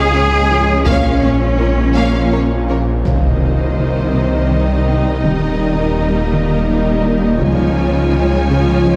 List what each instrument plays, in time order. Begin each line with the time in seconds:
Already playing: detuned saw bass C#2, ambient pad G#3 C#4 F4 C#5, cello section G#4, violin section C#5 F5
0.13 synth arpeggio sound C#4, viola section C#4, violin section C#5
0.49 synth arpeggio sound F3, viola section C#4, violin section G#4 C#5
0.85 detuned saw bass A#1, ambient pad A#3, synth arpeggio sound A#3, viola section A#3, cello section C#4, violin section C#5 F5, taiko
1.21 viola section A#3, synth arpeggio sound C#4, violin section C#5
1.58 viola section A#3, synth arpeggio sound F4, violin section A#4 C#5
1.94 viola section A#3, synth arpeggio sound A#3, violin section C#5 F5
2.31 viola section A#3, synth arpeggio sound A#4, violin section C#5
2.68 viola section A#3, synth arpeggio sound C#4, violin section A#4 C#5
3.04 detuned saw bass C2, cello section C3, synth arpeggio sound C3, viola section D#3 D#4, ambient pad G3 C4 D#4 D#5, violin section C5 D#5, taiko, impact
3.78 synth arpeggio sound D#3
4.15 synth arpeggio sound C3
4.51 synth arpeggio sound D#3
4.88 synth arpeggio sound C4
5.23 detuned saw bass D#1, cello section D#3, synth arpeggio sound D#3, viola section G3, ambient pad A#3, violin section A#4
5.97 synth arpeggio sound G3
6.33 synth arpeggio sound D#3
6.70 synth arpeggio sound G3
7.05 synth arpeggio sound D#4
7.41 detuned saw bass C#2, cello section C#3, synth arpeggio sound C#3, viola section F3 F4, ambient pad G#3 C#4 F4 C#5, violin section C#5 G#5, taiko
8.14 synth arpeggio sound F3
8.51 synth arpeggio sound C#3
8.88 synth arpeggio sound F3